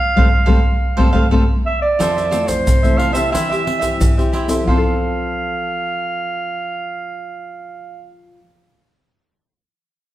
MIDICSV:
0, 0, Header, 1, 7, 480
1, 0, Start_track
1, 0, Key_signature, -1, "major"
1, 0, Tempo, 668151
1, 1439, Time_signature, 4, 2, 24, 8
1, 7290, End_track
2, 0, Start_track
2, 0, Title_t, "Clarinet"
2, 0, Program_c, 0, 71
2, 0, Note_on_c, 0, 77, 103
2, 953, Note_off_c, 0, 77, 0
2, 1194, Note_on_c, 0, 76, 85
2, 1301, Note_off_c, 0, 76, 0
2, 1305, Note_on_c, 0, 74, 76
2, 1778, Note_on_c, 0, 72, 75
2, 1788, Note_off_c, 0, 74, 0
2, 2140, Note_on_c, 0, 77, 83
2, 2151, Note_off_c, 0, 72, 0
2, 2249, Note_off_c, 0, 77, 0
2, 2253, Note_on_c, 0, 76, 78
2, 2376, Note_off_c, 0, 76, 0
2, 2386, Note_on_c, 0, 76, 81
2, 3082, Note_off_c, 0, 76, 0
2, 3358, Note_on_c, 0, 77, 69
2, 5825, Note_off_c, 0, 77, 0
2, 7290, End_track
3, 0, Start_track
3, 0, Title_t, "Cavaquinho"
3, 0, Program_c, 1, 24
3, 120, Note_on_c, 1, 77, 87
3, 124, Note_on_c, 1, 72, 71
3, 125, Note_on_c, 1, 69, 64
3, 198, Note_off_c, 1, 69, 0
3, 199, Note_off_c, 1, 72, 0
3, 199, Note_off_c, 1, 77, 0
3, 329, Note_on_c, 1, 77, 75
3, 331, Note_on_c, 1, 69, 84
3, 335, Note_on_c, 1, 72, 75
3, 419, Note_off_c, 1, 77, 0
3, 421, Note_off_c, 1, 69, 0
3, 421, Note_off_c, 1, 72, 0
3, 695, Note_on_c, 1, 72, 97
3, 698, Note_on_c, 1, 77, 77
3, 699, Note_on_c, 1, 69, 84
3, 783, Note_off_c, 1, 72, 0
3, 783, Note_off_c, 1, 77, 0
3, 784, Note_off_c, 1, 69, 0
3, 809, Note_on_c, 1, 77, 87
3, 810, Note_on_c, 1, 72, 80
3, 814, Note_on_c, 1, 69, 73
3, 898, Note_off_c, 1, 72, 0
3, 899, Note_off_c, 1, 69, 0
3, 899, Note_off_c, 1, 77, 0
3, 942, Note_on_c, 1, 69, 89
3, 947, Note_on_c, 1, 72, 80
3, 950, Note_on_c, 1, 77, 75
3, 1027, Note_off_c, 1, 69, 0
3, 1028, Note_off_c, 1, 72, 0
3, 1028, Note_off_c, 1, 77, 0
3, 1429, Note_on_c, 1, 65, 68
3, 1435, Note_on_c, 1, 69, 74
3, 1440, Note_on_c, 1, 72, 72
3, 1441, Note_on_c, 1, 76, 85
3, 1544, Note_off_c, 1, 65, 0
3, 1546, Note_off_c, 1, 76, 0
3, 1547, Note_off_c, 1, 69, 0
3, 1550, Note_off_c, 1, 72, 0
3, 1554, Note_on_c, 1, 76, 43
3, 1560, Note_on_c, 1, 72, 43
3, 1564, Note_on_c, 1, 69, 42
3, 1652, Note_off_c, 1, 69, 0
3, 1656, Note_off_c, 1, 72, 0
3, 1658, Note_on_c, 1, 65, 62
3, 1660, Note_on_c, 1, 69, 59
3, 1661, Note_off_c, 1, 76, 0
3, 1664, Note_on_c, 1, 72, 66
3, 1669, Note_on_c, 1, 76, 68
3, 1765, Note_off_c, 1, 65, 0
3, 1768, Note_off_c, 1, 76, 0
3, 1769, Note_off_c, 1, 69, 0
3, 1770, Note_off_c, 1, 72, 0
3, 2032, Note_on_c, 1, 76, 44
3, 2035, Note_on_c, 1, 72, 35
3, 2043, Note_on_c, 1, 69, 33
3, 2132, Note_off_c, 1, 69, 0
3, 2138, Note_off_c, 1, 72, 0
3, 2138, Note_on_c, 1, 65, 43
3, 2140, Note_off_c, 1, 76, 0
3, 2141, Note_on_c, 1, 69, 45
3, 2146, Note_on_c, 1, 72, 44
3, 2149, Note_on_c, 1, 76, 47
3, 2239, Note_off_c, 1, 76, 0
3, 2241, Note_off_c, 1, 72, 0
3, 2247, Note_on_c, 1, 76, 59
3, 2249, Note_on_c, 1, 72, 54
3, 2251, Note_off_c, 1, 69, 0
3, 2258, Note_off_c, 1, 65, 0
3, 2259, Note_on_c, 1, 69, 49
3, 2373, Note_off_c, 1, 76, 0
3, 2374, Note_off_c, 1, 72, 0
3, 2379, Note_off_c, 1, 69, 0
3, 2386, Note_on_c, 1, 64, 60
3, 2389, Note_on_c, 1, 67, 55
3, 2392, Note_on_c, 1, 72, 70
3, 2395, Note_on_c, 1, 76, 73
3, 2502, Note_off_c, 1, 64, 0
3, 2503, Note_off_c, 1, 67, 0
3, 2503, Note_off_c, 1, 76, 0
3, 2505, Note_off_c, 1, 72, 0
3, 2511, Note_on_c, 1, 76, 42
3, 2517, Note_on_c, 1, 72, 44
3, 2520, Note_on_c, 1, 67, 41
3, 2609, Note_off_c, 1, 72, 0
3, 2611, Note_off_c, 1, 67, 0
3, 2612, Note_off_c, 1, 76, 0
3, 2726, Note_on_c, 1, 76, 54
3, 2735, Note_on_c, 1, 72, 52
3, 2737, Note_on_c, 1, 67, 51
3, 2972, Note_off_c, 1, 76, 0
3, 2976, Note_off_c, 1, 72, 0
3, 2977, Note_off_c, 1, 67, 0
3, 2998, Note_on_c, 1, 76, 34
3, 3002, Note_on_c, 1, 72, 29
3, 3007, Note_on_c, 1, 67, 28
3, 3105, Note_off_c, 1, 67, 0
3, 3108, Note_off_c, 1, 76, 0
3, 3108, Note_on_c, 1, 64, 55
3, 3110, Note_off_c, 1, 72, 0
3, 3114, Note_on_c, 1, 67, 54
3, 3118, Note_on_c, 1, 72, 57
3, 3118, Note_on_c, 1, 76, 62
3, 3217, Note_off_c, 1, 76, 0
3, 3222, Note_off_c, 1, 72, 0
3, 3223, Note_off_c, 1, 64, 0
3, 3226, Note_off_c, 1, 67, 0
3, 3226, Note_on_c, 1, 76, 38
3, 3230, Note_on_c, 1, 72, 37
3, 3236, Note_on_c, 1, 67, 33
3, 3342, Note_off_c, 1, 76, 0
3, 3344, Note_off_c, 1, 72, 0
3, 3347, Note_off_c, 1, 67, 0
3, 3358, Note_on_c, 1, 65, 66
3, 3364, Note_on_c, 1, 69, 65
3, 3372, Note_on_c, 1, 72, 61
3, 6058, Note_off_c, 1, 65, 0
3, 6064, Note_off_c, 1, 69, 0
3, 6072, Note_off_c, 1, 72, 0
3, 7290, End_track
4, 0, Start_track
4, 0, Title_t, "Nylon-string guitar"
4, 0, Program_c, 2, 24
4, 117, Note_on_c, 2, 55, 84
4, 121, Note_on_c, 2, 60, 84
4, 122, Note_on_c, 2, 57, 87
4, 196, Note_off_c, 2, 55, 0
4, 197, Note_off_c, 2, 57, 0
4, 198, Note_off_c, 2, 60, 0
4, 338, Note_on_c, 2, 57, 88
4, 343, Note_on_c, 2, 55, 96
4, 344, Note_on_c, 2, 60, 87
4, 425, Note_off_c, 2, 57, 0
4, 426, Note_off_c, 2, 60, 0
4, 427, Note_off_c, 2, 55, 0
4, 702, Note_on_c, 2, 55, 72
4, 703, Note_on_c, 2, 57, 82
4, 706, Note_on_c, 2, 60, 83
4, 787, Note_off_c, 2, 55, 0
4, 787, Note_off_c, 2, 57, 0
4, 787, Note_off_c, 2, 60, 0
4, 815, Note_on_c, 2, 55, 94
4, 820, Note_on_c, 2, 57, 86
4, 822, Note_on_c, 2, 60, 81
4, 903, Note_off_c, 2, 55, 0
4, 903, Note_off_c, 2, 60, 0
4, 904, Note_off_c, 2, 57, 0
4, 950, Note_on_c, 2, 57, 91
4, 951, Note_on_c, 2, 55, 86
4, 953, Note_on_c, 2, 60, 99
4, 1030, Note_off_c, 2, 57, 0
4, 1031, Note_off_c, 2, 55, 0
4, 1032, Note_off_c, 2, 60, 0
4, 1434, Note_on_c, 2, 41, 75
4, 1665, Note_on_c, 2, 52, 43
4, 1671, Note_on_c, 2, 57, 51
4, 1673, Note_on_c, 2, 60, 56
4, 1891, Note_off_c, 2, 41, 0
4, 1916, Note_on_c, 2, 48, 71
4, 1993, Note_off_c, 2, 52, 0
4, 1995, Note_off_c, 2, 60, 0
4, 1996, Note_off_c, 2, 57, 0
4, 2034, Note_on_c, 2, 52, 51
4, 2038, Note_on_c, 2, 57, 53
4, 2042, Note_on_c, 2, 60, 59
4, 2237, Note_off_c, 2, 52, 0
4, 2239, Note_off_c, 2, 57, 0
4, 2241, Note_off_c, 2, 60, 0
4, 2260, Note_on_c, 2, 60, 58
4, 2263, Note_on_c, 2, 64, 58
4, 2265, Note_on_c, 2, 67, 59
4, 2372, Note_off_c, 2, 48, 0
4, 2397, Note_on_c, 2, 52, 62
4, 2590, Note_off_c, 2, 60, 0
4, 2590, Note_off_c, 2, 64, 0
4, 2593, Note_off_c, 2, 67, 0
4, 2632, Note_on_c, 2, 60, 43
4, 2636, Note_on_c, 2, 64, 47
4, 2637, Note_on_c, 2, 67, 60
4, 2853, Note_off_c, 2, 52, 0
4, 2872, Note_on_c, 2, 52, 59
4, 2956, Note_off_c, 2, 60, 0
4, 2957, Note_off_c, 2, 64, 0
4, 2959, Note_off_c, 2, 67, 0
4, 3003, Note_on_c, 2, 60, 45
4, 3007, Note_on_c, 2, 64, 45
4, 3011, Note_on_c, 2, 67, 57
4, 3201, Note_off_c, 2, 60, 0
4, 3203, Note_off_c, 2, 64, 0
4, 3206, Note_off_c, 2, 67, 0
4, 3216, Note_on_c, 2, 60, 52
4, 3220, Note_on_c, 2, 64, 46
4, 3225, Note_on_c, 2, 69, 48
4, 3322, Note_off_c, 2, 52, 0
4, 3325, Note_on_c, 2, 53, 51
4, 3361, Note_off_c, 2, 60, 0
4, 3370, Note_on_c, 2, 60, 57
4, 3424, Note_off_c, 2, 69, 0
4, 3432, Note_on_c, 2, 69, 62
4, 3550, Note_off_c, 2, 64, 0
4, 6025, Note_off_c, 2, 53, 0
4, 6070, Note_off_c, 2, 60, 0
4, 6132, Note_off_c, 2, 69, 0
4, 7290, End_track
5, 0, Start_track
5, 0, Title_t, "Muted cavaquinho strokes"
5, 1774, Note_on_c, 9, 29, 34
5, 1846, Note_off_c, 9, 29, 0
5, 2615, Note_on_c, 9, 29, 33
5, 2687, Note_off_c, 9, 29, 0
5, 7290, End_track
6, 0, Start_track
6, 0, Title_t, "Pandeiro"
6, 1439, Note_on_c, 9, 54, 77
6, 1511, Note_off_c, 9, 54, 0
6, 1565, Note_on_c, 9, 54, 27
6, 1637, Note_off_c, 9, 54, 0
6, 1669, Note_on_c, 9, 54, 58
6, 1741, Note_off_c, 9, 54, 0
6, 1784, Note_on_c, 9, 54, 63
6, 1855, Note_off_c, 9, 54, 0
6, 1918, Note_on_c, 9, 54, 66
6, 1990, Note_off_c, 9, 54, 0
6, 2043, Note_on_c, 9, 54, 32
6, 2115, Note_off_c, 9, 54, 0
6, 2151, Note_on_c, 9, 54, 48
6, 2223, Note_off_c, 9, 54, 0
6, 2263, Note_on_c, 9, 54, 59
6, 2335, Note_off_c, 9, 54, 0
6, 2405, Note_on_c, 9, 54, 72
6, 2477, Note_off_c, 9, 54, 0
6, 2532, Note_on_c, 9, 54, 33
6, 2604, Note_off_c, 9, 54, 0
6, 2638, Note_on_c, 9, 54, 51
6, 2710, Note_off_c, 9, 54, 0
6, 2745, Note_on_c, 9, 54, 55
6, 2817, Note_off_c, 9, 54, 0
6, 2880, Note_on_c, 9, 54, 69
6, 2952, Note_off_c, 9, 54, 0
6, 3009, Note_on_c, 9, 54, 27
6, 3081, Note_off_c, 9, 54, 0
6, 3113, Note_on_c, 9, 54, 43
6, 3185, Note_off_c, 9, 54, 0
6, 3225, Note_on_c, 9, 54, 56
6, 3297, Note_off_c, 9, 54, 0
6, 7290, End_track
7, 0, Start_track
7, 0, Title_t, "Drums"
7, 129, Note_on_c, 9, 87, 101
7, 200, Note_off_c, 9, 87, 0
7, 346, Note_on_c, 9, 87, 94
7, 417, Note_off_c, 9, 87, 0
7, 713, Note_on_c, 9, 87, 85
7, 785, Note_off_c, 9, 87, 0
7, 822, Note_on_c, 9, 87, 98
7, 894, Note_off_c, 9, 87, 0
7, 956, Note_on_c, 9, 87, 100
7, 1028, Note_off_c, 9, 87, 0
7, 1439, Note_on_c, 9, 82, 70
7, 1439, Note_on_c, 9, 87, 47
7, 1511, Note_off_c, 9, 82, 0
7, 1511, Note_off_c, 9, 87, 0
7, 1565, Note_on_c, 9, 82, 30
7, 1637, Note_off_c, 9, 82, 0
7, 1669, Note_on_c, 9, 82, 64
7, 1741, Note_off_c, 9, 82, 0
7, 1784, Note_on_c, 9, 82, 69
7, 1784, Note_on_c, 9, 87, 30
7, 1855, Note_off_c, 9, 82, 0
7, 1855, Note_off_c, 9, 87, 0
7, 1918, Note_on_c, 9, 82, 70
7, 1918, Note_on_c, 9, 87, 80
7, 1990, Note_off_c, 9, 82, 0
7, 1990, Note_off_c, 9, 87, 0
7, 2043, Note_on_c, 9, 82, 28
7, 2043, Note_on_c, 9, 87, 32
7, 2115, Note_off_c, 9, 82, 0
7, 2115, Note_off_c, 9, 87, 0
7, 2263, Note_on_c, 9, 82, 77
7, 2335, Note_off_c, 9, 82, 0
7, 2405, Note_on_c, 9, 82, 75
7, 2405, Note_on_c, 9, 87, 51
7, 2477, Note_off_c, 9, 82, 0
7, 2477, Note_off_c, 9, 87, 0
7, 2532, Note_on_c, 9, 82, 33
7, 2604, Note_off_c, 9, 82, 0
7, 2745, Note_on_c, 9, 82, 72
7, 2745, Note_on_c, 9, 87, 30
7, 2817, Note_off_c, 9, 82, 0
7, 2817, Note_off_c, 9, 87, 0
7, 2880, Note_on_c, 9, 82, 73
7, 2880, Note_on_c, 9, 87, 86
7, 2952, Note_off_c, 9, 82, 0
7, 2952, Note_off_c, 9, 87, 0
7, 3009, Note_on_c, 9, 82, 28
7, 3081, Note_off_c, 9, 82, 0
7, 3225, Note_on_c, 9, 82, 63
7, 3225, Note_on_c, 9, 87, 30
7, 3297, Note_off_c, 9, 82, 0
7, 3297, Note_off_c, 9, 87, 0
7, 3358, Note_on_c, 9, 87, 76
7, 3429, Note_off_c, 9, 87, 0
7, 7290, End_track
0, 0, End_of_file